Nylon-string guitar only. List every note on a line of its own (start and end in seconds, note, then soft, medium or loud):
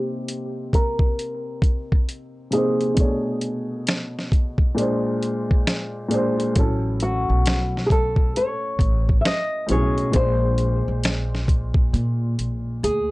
0.00 0.70 G4 medium
0.75 2.04 A#4 medium
2.53 5.18 G#4 medium
7.03 7.86 F#4 medium
7.86 7.91 G#4 medium
7.92 8.32 A4 medium
8.37 9.21 C#5 medium
9.21 9.25 E5 medium
9.27 9.71 D#5 loud
9.71 10.12 C#5 medium
10.16 12.79 C5 medium
12.84 13.11 G#4 medium